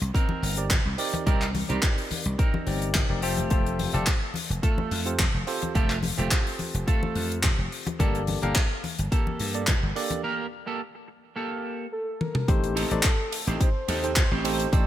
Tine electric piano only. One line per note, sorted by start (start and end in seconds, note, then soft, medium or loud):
0.57 0.73 C4 medium
0.57 0.73 D#4 medium
0.57 0.73 G4 medium
0.57 0.73 A#4 medium
0.57 0.73 D5 medium
0.98 1.23 C4 medium
0.98 1.23 D#4 medium
0.98 1.24 G4 medium
0.98 1.24 A#4 medium
0.98 1.24 D5 loud
1.26 1.44 C4 loud
1.26 1.44 D#4 medium
1.26 1.44 G4 medium
1.26 1.44 A#4 medium
1.26 1.44 D5 loud
1.69 2.64 C4 medium
1.69 2.64 D#4 medium
1.69 2.64 G4 medium
1.69 2.65 A#4 medium
1.69 2.65 D5 medium
2.66 3.06 C4 medium
2.66 3.06 D#4 medium
2.66 3.06 G4 medium
2.66 3.07 A#4 medium
2.66 3.07 D5 medium
3.09 3.20 C4 medium
3.09 3.20 D#4 medium
3.09 3.20 G4 medium
3.09 3.20 A#4 medium
3.09 3.20 D5 medium
3.22 3.48 C4 medium
3.22 3.48 F4 medium
3.22 3.48 G4 medium
3.22 3.48 A4 medium
3.22 3.48 C5 medium
3.50 3.90 C4 medium
3.50 3.90 F4 medium
3.50 3.90 G4 medium
3.50 3.90 A4 medium
3.50 3.91 C5 medium
3.93 4.09 C4 medium
3.93 4.09 F4 medium
3.93 4.10 G4 medium
3.93 4.10 A4 medium
3.93 4.10 D5 loud
5.06 5.21 C4 medium
5.06 5.22 F4 medium
5.06 5.22 G4 medium
5.06 5.22 A4 medium
5.06 5.22 C5 medium
5.47 5.72 C4 medium
5.47 5.72 F4 medium
5.47 5.72 G4 medium
5.47 5.72 A4 medium
5.47 5.72 C5 loud
5.75 5.92 C4 medium
5.75 5.92 F4 medium
5.75 5.92 G4 medium
5.75 5.93 A4 medium
5.75 5.93 C5 loud
6.17 7.96 C4 medium
6.17 7.96 F4 medium
6.17 7.97 G4 medium
6.17 7.97 A4 medium
6.17 7.97 C5 medium
7.99 8.39 A#3 loud
7.99 8.39 D4 medium
7.99 8.39 G4 medium
7.99 8.39 A4 medium
7.99 8.39 D5 loud
8.42 8.58 A#3 medium
8.42 8.58 D4 medium
8.42 8.58 G4 medium
8.42 8.58 A4 medium
8.42 8.59 F5 loud
9.54 9.70 A#3 medium
9.54 9.70 D4 medium
9.54 9.70 G4 medium
9.54 9.70 A4 medium
9.54 9.71 D5 medium
9.95 10.21 A#3 loud
9.95 10.21 D4 medium
9.95 10.21 G4 medium
9.95 10.21 A4 medium
9.95 10.21 D5 loud
12.48 12.88 C4 medium
12.48 12.88 D#4 medium
12.48 12.88 G4 medium
12.48 12.88 A4 medium
12.48 12.88 C5 loud
12.91 13.07 C4 medium
12.91 13.07 D#4 medium
12.91 13.07 G4 medium
12.91 13.07 A4 medium
12.91 13.07 D5 loud
14.03 14.19 C4 medium
14.03 14.19 D#4 medium
14.03 14.19 G4 medium
14.03 14.19 A4 medium
14.03 14.19 C5 medium
14.44 14.69 C4 loud
14.44 14.69 D#4 medium
14.44 14.70 G4 medium
14.44 14.70 A4 medium
14.44 14.70 C5 loud
14.72 14.87 C4 medium
14.72 14.87 D#4 medium
14.72 14.87 G4 medium
14.72 14.87 A4 medium
14.72 14.87 C5 loud